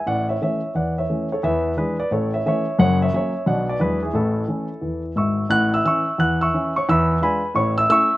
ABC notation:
X:1
M:4/4
L:1/8
Q:"Swing" 1/4=176
K:A
V:1 name="Grand piano"
[df] [ce] [ce]2 [df] [ce]2 [Ac] | [Be]2 [GB] [Bd] [Ac] [ce] [ce]2 | [cf] [ce] [ce]2 [df] [Bd] [GB] [EG] | [EA]6 [ec'e']2 |
[ff'] [ee'] [ec'e']2 [ff'] [ec'e']2 [cc'] | [ebe']2 [Bgb]2 [cc'] [ee'] [ec'e']2 |]
V:2 name="Grand piano" clef=bass
[A,,,A,,]2 [E,A,C]2 [E,,E,]2 [E,A,C]2 | [E,,E,]2 [E,G,D]2 [A,,,A,,]2 [E,A,C]2 | [F,,,F,,]2 [F,^A,C]2 [B,,,B,,F,B,D]2 [E,,E,F,G,D]2 | [A,,,A,,]2 [E,A,C]2 [E,,E,]2 [G,,,G,,]2 |
[A,,,A,,]2 [E,CE]2 [E,,E,]2 [E,CE]2 | [E,,E,]2 [G,D=F]2 [A,,,A,,]2 [A,CE]2 |]